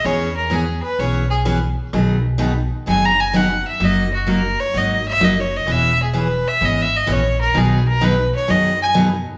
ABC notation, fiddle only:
X:1
M:4/4
L:1/8
Q:"Swing" 1/4=128
K:B
V:1 name="Fiddle"
c A G B c G z2 | z4 (3g a g f e | d F A c d e (3d c d | e G B e (3d e d c A |
G A B c d g z2 |]